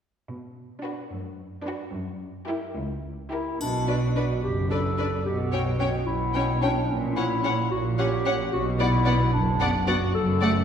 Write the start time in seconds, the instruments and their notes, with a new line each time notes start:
0.29 cello section B2
0.84 viola section D4, violin section F#4 B4
1.12 cello section F#2
1.66 viola section D4, violin section F#4 B4
1.93 cello section F#2
2.47 viola section E4, violin section G4 A#4
2.75 cello section C#2
3.32 clarinet E4, viola section E4, violin section G4 A#4
3.60 double bass section B1, cello section B2, clarinet D4, triangle
3.88 viola section D4, clarinet F#4, violin section B4 D5
4.16 viola section D4, violin section B4 D5
4.43 double bass section F#1, cello section F#2, clarinet G4
4.71 viola section D4, clarinet A4, violin section B4 D5
4.98 viola section D4, violin section B4 D5
5.25 double bass section B1, cello section B2, clarinet G4
5.52 viola section C#4, clarinet F#4, violin section C#5 G5
5.79 viola section C#4, violin section C#5 G5
6.06 double bass section B1, cello section B2, clarinet E4
6.33 viola section C#4, violin section C#5 G5
6.62 viola section C#4, clarinet D4, violin section C#5 G5
6.89 double bass section A#1, cello section A#2, clarinet C#4
7.15 viola section C#4, clarinet E4, violin section C#5 F#5
7.44 viola section C#4, violin section C#5 F#5
7.71 double bass section A#1, cello section A#2, clarinet F#4
7.98 viola section C#4, clarinet G4, violin section C#5 F#5
8.25 viola section C#4, violin section C#5 F#5
8.52 double bass section B1, cello section B2, clarinet F#4
8.79 viola section B3, clarinet E4, violin section D5 F#5
9.05 viola section B3, violin section D5 F#5
9.32 double bass section F#1, cello section F#2, clarinet D4
9.60 viola section B3, violin section D5 F#5
9.87 viola section B3, clarinet F#4, violin section D5 F#5
10.14 double bass section F#1, cello section F#2, clarinet A4
10.41 viola section A3, violin section D5 F#5